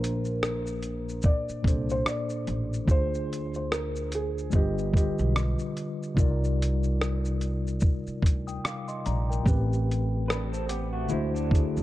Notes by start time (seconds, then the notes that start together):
Already playing: A#1 A#2 A#3 D4 A#4 C5
0.04 closed hi-hat, shaker
0.25 shaker
0.43 cross-stick, shaker
0.67 shaker
0.83 closed hi-hat, shaker
1.09 shaker
1.22 D5, kick, shaker
1.49 muted upright bass stroke, shaker
1.62 C2 A#2 A#3 D4, kick
1.67 A4 C5, closed hi-hat, shaker
1.89 C5, shaker
2.06 D5, cross-stick, shaker
2.29 shaker
2.47 A1, closed hi-hat, shaker
2.73 shaker
2.85 D2 D3 D4 F4, kick, shaker
2.90 G#4 C5
3.14 shaker
3.33 closed hi-hat, shaker
3.54 C5, shaker
3.72 A#4, cross-stick, shaker
3.96 shaker
4.12 G#4, closed hi-hat, shaker
4.38 shaker
4.50 G1 D3 G3 F4, kick, shaker
4.54 G4 B4 D#5
4.78 shaker
4.91 D3 G3 F4 B4, kick
4.96 G4 D#5, closed hi-hat, shaker
5.19 B1, shaker
5.36 cross-stick, shaker
5.59 shaker
5.77 closed hi-hat, shaker
6.03 shaker
6.14 C2 C3 G3 D#4 F4, kick, shaker
6.19 A#4 D5
6.44 shaker
6.62 closed hi-hat, shaker
6.83 shaker
7.01 cross-stick, shaker
7.25 shaker
7.41 closed hi-hat, shaker
7.67 shaker
7.80 kick, shaker
8.07 muted upright bass stroke, shaker
8.23 D2, kick, closed hi-hat, shaker
8.47 G5 D#6, shaker
8.64 F5 D6, cross-stick, shaker
8.88 D#5 C6, shaker
9.06 A#1 D5 A#5, closed hi-hat, shaker
9.29 A#4 G5, shaker
9.43 A1 A2 A3 C4, kick, shaker
9.47 G4 B4
9.73 shaker
9.91 closed hi-hat, shaker
10.28 D4 B4, cross-stick, shaker
10.52 C4 A4, shaker
10.69 B3 G4, closed hi-hat, shaker
10.93 A3 F#4
11.07 D3 G#3 A3 E4, shaker
11.11 D2 F#4 C5
11.34 F#3 D4, shaker
11.49 D3 A3 E4, kick
11.53 F#4 G#4, closed hi-hat, shaker
11.77 E2, shaker